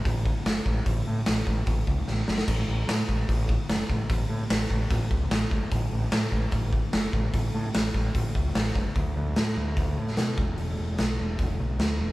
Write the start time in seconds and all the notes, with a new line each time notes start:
0.05 A1, kick, open hi-hat
0.26 kick
0.46 F#1, snare, open hi-hat
0.66 A1, kick
0.86 A1, kick, open hi-hat
1.07 A2
1.26 A1, snare, open hi-hat
1.47 A1, kick
1.66 A1, kick, open hi-hat
1.87 C#2, kick
2.08 A1, snare
2.28 F#1, snare
2.38 snare
2.48 A1, kick, open hi-hat, crash
2.68 A1
2.87 A2, snare, open hi-hat
3.09 A1, kick
3.29 A1, kick, open hi-hat
3.49 kick
3.69 F#1, snare, open hi-hat
3.90 A1, kick
4.10 A1, kick, open hi-hat
4.30 A2
4.50 A1, snare, open hi-hat
4.70 A1, kick
4.90 A1, kick, open hi-hat
5.11 C#2, kick
5.30 A1, snare, open hi-hat
5.51 F#1, kick
5.71 A1, kick, open hi-hat
5.92 A1
6.12 A2, snare, open hi-hat
6.32 A1, kick
6.51 A1, kick, open hi-hat
6.73 kick
6.93 F#1, snare, open hi-hat
7.13 A1, kick
7.34 A1, kick, open hi-hat
7.55 A2
7.74 A1, snare, open hi-hat
7.94 A1, kick
8.15 A1, kick, open hi-hat
8.35 C#2, kick
8.55 A1, snare, open hi-hat
8.75 F#1, kick
8.95 D2, kick, open hi-hat
9.16 D2
9.36 A2, snare, open hi-hat
9.56 D2
9.77 D2, kick, open hi-hat
9.97 A2
10.07 snare
10.17 B2, snare, open hi-hat
10.38 E1, kick
10.58 E1, open hi-hat
10.78 E1
10.98 B1, snare, open hi-hat
11.20 E1
11.39 E1, kick, open hi-hat
11.60 B1
11.79 D2, snare, open hi-hat
12.00 E1